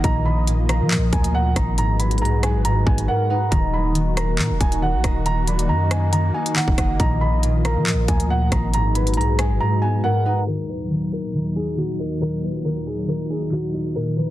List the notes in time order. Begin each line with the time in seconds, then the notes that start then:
Already playing: A#3 D#4 D#5
0.04 A#1 A#2 F4 D#5 A#5, kick, closed hi-hat
0.25 D#3 B5
0.47 A#2, closed hi-hat
0.69 F3 A#4 A#5, cross-stick, closed hi-hat
0.81 F3
0.91 A#2, clap
0.97 A#1
1.13 D2 A#3 G#5, kick, closed hi-hat
1.24 closed hi-hat
1.34 A#2 F#5
1.56 G#1 D#4 A#5, kick, cross-stick, closed hi-hat
1.78 G#2 G#3 F#4 B4 A#5, closed hi-hat
1.99 F#3 B4 B5, closed hi-hat
2.11 closed hi-hat
2.18 B1 G#2 G#4 A#5, closed hi-hat
2.25 closed hi-hat
2.43 G#3 G#5, cross-stick, closed hi-hat
2.55 G#1
2.65 G#2 A#5, closed hi-hat
2.86 G#1 B3 G#5, kick
2.98 closed hi-hat
3.08 G#2 A#4 F#5
3.30 D#4 B4 F#5
3.51 D#1 D#3 A#3 F#4 D#5 A#5, kick, closed hi-hat
3.74 F#3 B5
3.95 D#3, closed hi-hat
4.17 A#3 A#4 A#5, cross-stick, closed hi-hat
4.39 A#2 D#3, clap
4.50 D#1
4.61 D#1 D#4 G#5, kick, closed hi-hat
4.72 closed hi-hat
4.82 D#3 F#5
4.94 A#1
5.04 D#1 D#5 A#5, kick, cross-stick, closed hi-hat
5.26 D#3 A#5, closed hi-hat
5.47 F#3 D5 B5, closed hi-hat
5.59 closed hi-hat
5.69 F#2 D#3 D#5 A#5
5.91 A#3 G#5, cross-stick, closed hi-hat
6.13 D#3 A#5, closed hi-hat
6.34 D#4 G#5
6.46 closed hi-hat
6.56 D#3 F#5, clap
6.68 D#1, kick
6.78 F#1 D#5 F#5, kick, cross-stick, closed hi-hat
6.99 A#1 A#2 F4 D#5 A#5, kick, closed hi-hat
7.21 D#3 B5
7.43 A#2, closed hi-hat
7.65 F3 A#4 A#5, cross-stick, closed hi-hat
7.76 F3
7.87 A#2, clap
7.92 A#1
8.08 D2 A#3 G#5, kick, closed hi-hat
8.20 closed hi-hat
8.30 A#2 F#5
8.52 G#1 D#4 A#5, kick, cross-stick, closed hi-hat
8.73 G#2 G#3 F#4 B4 A#5, closed hi-hat
8.95 F#3 B4 B5, closed hi-hat
9.07 closed hi-hat
9.14 B1 G#2 G#4 A#5, closed hi-hat
9.21 closed hi-hat
9.39 G#3 G#5, cross-stick, closed hi-hat
9.50 G#1
9.60 G#2 A#5
9.82 B3 G#5
10.04 G#2 A#4 F#5
10.25 D#4 B4 F#5
10.47 D#2 A#2 D#3 F#3 A#4
10.69 F#3 B4
10.91 D#3, closed hi-hat
11.12 A#3 A#4, closed hi-hat
11.34 D#3
11.56 D#4 G#4, closed hi-hat
11.68 closed hi-hat
11.78 D#3 F#4
11.99 A#4 D#5, closed hi-hat
12.21 D#3 A#4, closed hi-hat
12.43 F#3, closed hi-hat
12.55 closed hi-hat
12.65 D#3 A#4
12.87 A#3 G#4, closed hi-hat
13.08 D#3 A#4, closed hi-hat
13.30 D#4 G#4
13.42 closed hi-hat
13.52 D#3 F#4, clap
13.74 F#4 D#5, closed hi-hat
13.95 A#2 F3 D#4 A#4, closed hi-hat
14.17 D#3 B4